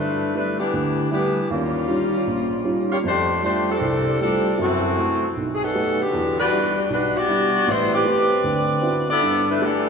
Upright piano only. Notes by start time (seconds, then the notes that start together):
Already playing: G2
0.34 G3 A3 B3 E4
0.73 D2
1.11 G3 A3 B3 E4
1.50 D#2
1.88 G3 C#4 D#4 F4
2.27 A#1
2.64 G3 C#4 D#4 F4
3.04 F2
3.42 G3 A3 D4 F4
3.81 C2
4.21 G3 A3 D4 F4
4.58 F#2 F#3
4.98 A3 E4 F#4
5.37 B1
5.74 A3 B3 D#4 G4
6.13 E2
6.52 G3 D4 E4 F#4
6.90 B1 B2
7.28 G3 D4 E4 F#4
7.67 A1 A2
8.05 A3 B3 C4 G4
8.44 D2
8.82 B3 C4 D4 E4 F#4
9.21 G2
9.61 A3 B3 E4 G4